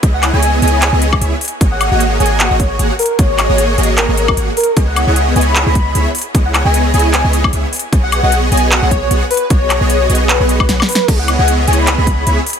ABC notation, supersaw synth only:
X:1
M:4/4
L:1/16
Q:"Swing 16ths" 1/4=152
K:C#dor
V:1 name="Supersaw synth"
[B,EGcd]3 [B,EGcd]3 [B,EGcd]3 [B,EGcd]3 [B,EGce] z3 | [A,FGcd]3 [A,FGcd]3 [A,FGcd]3 [A,FGcd]3 [A,FGcf] z3 | [A,FGcd]3 [A,FGcd]3 [A,FGcd]3 [A,FGcd]3 [A,FGcf] z3 | [B,EGcd]3 [B,EGcd]3 [B,EGcd]3 [B,EGcd]3 [B,EGce] z3 |
[B,EGcd]3 [B,EGcd]3 [B,EGcd]3 [B,EGcd]3 [B,EGce] z3 | [B,FGcd]3 [B,FGcd]3 [B,FGcd]3 [B,FGcd]3 [B,FGcf] z3 | [B,FGcd]3 [B,FGcd]3 [B,FGcd]3 [B,FGcd]3 [B,FGcf] z3 | [B,EGcd]3 [B,EGcd]3 [B,EGcd]3 [B,EGcd]3 [B,EGce] z3 |]